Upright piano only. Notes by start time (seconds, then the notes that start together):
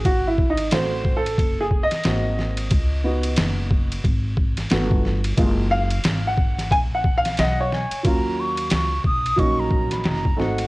0.05 F#4
0.27 E4
0.50 D#4
0.72 A3 C4 F#4 C5
1.16 A4
1.60 G#4
1.83 D#5
2.04 A#3 C4 F#4
3.04 B3 D#4 F#4
4.71 A3 B3 F#4
5.37 G#3 A#3 F4
5.71 F5
6.27 F#5
6.72 G#5
6.94 F#5
7.17 F5
7.39 D#5
7.61 C#5
8.03 F#3 A#3 C#4 F4
9.36 F#3 A#3 C#4 D#4
10.37 A3 C4 D#4 F#4